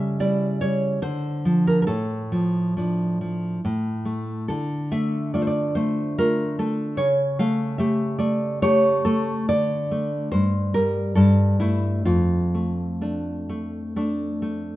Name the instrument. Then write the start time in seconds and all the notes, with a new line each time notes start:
nylon-string guitar
Already playing: C#3 G3 E5
0.20 G3 E4 D5
0.61 G3 C#5
1.02 D3 C5
1.45 F3
1.67 A#4
1.82 A#4
1.87 A2 A4
2.32 F3
2.77 F3 D4
3.21 F3
3.65 A2
4.05 A3
4.48 D3 A4
4.91 A3 E5
5.34 A3 F4 D5
5.42 C5
5.47 D5
5.75 A3 C5
6.18 A3 F4 A#4
6.59 A3 A4
6.97 C#3 C#5
7.39 A3 F5
7.78 A3 G4 E5
8.19 A3 D5
8.62 A3 G4 C#5
9.05 A3 A4
9.49 D3 D5
9.91 A3
10.32 G2 C5
10.74 G3 A#4
11.15 G2 A4
11.60 A3 E4
12.05 F2 F4
12.54 A3
13.01 A3 D4
13.49 A3
13.96 A3 D4
14.42 A3